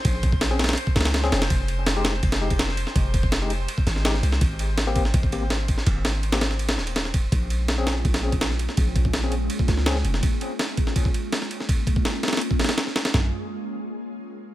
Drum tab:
RD |x---x---x---xxxxx---xxx-x---x-x-|x---x---x---x---x-x---x-x---x---|x---x---x---x---x---x---x---x---|x---x---x---x---x---x---x---x---|
SD |--------o---oooo----ooo-o-o-o-o-|--------o---o-----o-----o-o---o-|--------o-----------o-o-o-o---o-|--------o-----o---------o-----o-|
FT |--------------------------------|--------------------------------|--------------------------------|--------------------------------|
BD |o---o-o-----------o-------------|o---------------o-----o---------|o---o-o-----------o-------------|o-----------o---o-o---------o---|

RD |x---x---x-x-x---x-x---x-x---x---|x---x---x---x---x-x---x-x---x---|x---x---x---x---x---x---x---x---|x---x---x---x---x---x---x---x---|
SD |----o-----o-o-o---o-o---o-o-----|--------o---o-----o-----o-o---o-|--------o-----------o-o-o-o---o-|--------o-----o---------o-o---o-|
FT |--------------------------------|--------------------------------|--------------------------------|--------------------------------|
BD |o---------------------------o---|o---------------o-----o---------|o---o-o-----------o-------------|o-----------o---o-o-------------|

RD |x---x---x---xxxxx---xxx-x---x-x-|--------------------------------|
SD |--------o---oooo----ooo-o-o-o-o-|o-------------------------------|
FT |--------------------------------|o-------------------------------|
BD |o---o-o-----------o-------------|--------------------------------|